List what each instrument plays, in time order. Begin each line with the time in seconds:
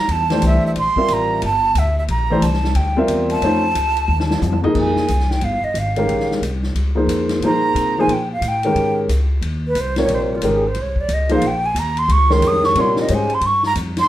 Already playing: flute A#5
0.08 upright bass E2, flute A5, ride
0.30 grand piano E3 A3 D4 G4 C5, snare, ride
0.42 upright bass C2, hi-hat pedal, ride
0.46 flute E5
0.67 flute E5
0.76 upright bass A#1, flute C6, ride
0.96 grand piano G3 C4 F4 A#4 E5, muted upright bass stroke, kick
1.08 upright bass A1, hi-hat pedal, ride
1.13 flute A#5
1.42 upright bass G1, flute A5, ride
1.75 upright bass D2, flute E5, hi-hat pedal, ride
1.99 flute E5
2.08 upright bass A#1, flute A#5, ride
2.30 grand piano E3 A3 D4 G4 C5
2.41 upright bass C2, flute A5, hi-hat pedal, ride
2.53 snare
2.64 snare
2.75 upright bass D2, flute G5, ride
2.97 grand piano G3 C4 F4 A#4 E5
3.08 upright bass E2, hi-hat pedal, ride
3.30 flute A5, ride
3.42 upright bass F2, grand piano A3 C#4 D#4 F4 C5, ride
3.75 upright bass C#2, hi-hat pedal, ride
3.97 ride
4.08 upright bass D#2
4.20 snare
4.31 snare
4.42 upright bass F2, floor tom, hi-hat pedal
4.52 floor tom
4.63 grand piano F3 A#3 D#4 G#4 D#5, floor tom
4.75 upright bass A#1, kick, crash
4.79 flute G#5
4.96 muted upright bass stroke, snare
5.08 upright bass C2, hi-hat pedal, ride
5.20 snare
5.31 flute G5, snare
5.41 upright bass G1, flute F5, ride
5.63 flute D#5, muted upright bass stroke
5.74 upright bass G#1, hi-hat pedal, ride
5.79 flute F5
5.96 grand piano D#3 G#3 C#4 G4 A#4, ride
6.07 upright bass A#1, ride
6.20 snare
6.31 snare
6.42 upright bass C2, hi-hat pedal, ride
6.63 snare
6.75 upright bass C#2, ride
6.95 grand piano F3 A#3 D#4 G#4 C5
7.07 upright bass F2, hi-hat pedal, ride
7.29 snare, ride
7.41 upright bass A#2, grand piano F3 A#3 D#4, ride
7.45 grand piano G#4 C5, flute A#5
7.75 upright bass C3, hi-hat pedal, ride
7.98 grand piano F3 A#3 D#4 G#4 C5, flute G#5
8.08 upright bass A#2, ride
8.13 flute G5
8.32 flute F5
8.41 upright bass A2, hi-hat pedal, ride
8.48 flute G5
8.63 grand piano D#3 G#3 C#4 G4 A#4, ride
8.75 upright bass G#2, ride
9.09 upright bass C#2, hi-hat pedal, ride
9.41 upright bass D#2, ride
9.67 flute B4
9.75 upright bass C2, hi-hat pedal, ride
9.80 flute C5
9.96 grand piano C3 G3 F4 A#4 C#5, flute C#5, snare, ride
10.08 upright bass A#1, ride
10.14 flute C5
10.35 flute F4
10.42 upright bass G#1, grand piano D#3 G#3 C#4 G4 A#4, hi-hat pedal, ride
10.48 flute G#4
10.67 flute C5
10.75 upright bass C2, ride
10.82 flute C#5
10.96 kick
11.00 flute D5
11.09 upright bass C#2, hi-hat pedal, ride
11.13 flute D#5
11.29 grand piano F3 A#3 D#4 G#4 C5, ride
11.34 flute F5
11.41 upright bass A#1, ride
11.47 flute G5
11.66 flute G#5
11.75 upright bass D#2, hi-hat pedal, ride
11.79 flute A#5
11.97 flute C6, ride
12.08 upright bass C#2, flute C#6, ride
12.30 grand piano D#3 G#3 C#4 G4 A#4, flute C6, snare
12.41 upright bass F2, hi-hat pedal, ride
12.47 flute D#6
12.63 flute C#6, snare
12.75 upright bass A#2, grand piano C3 G3 F4 A#4 C#5, ride
12.80 flute C6
12.96 snare
13.01 flute D#5
13.08 upright bass G#2, grand piano G#3 C#4 G4 C5 D#5, hi-hat pedal, ride
13.14 flute G#5
13.30 ride
13.34 flute C6
13.41 upright bass G2, ride
13.46 flute C#6
13.63 flute A#5, snare
13.75 upright bass F2, hi-hat pedal, ride
13.97 flute C6, snare, ride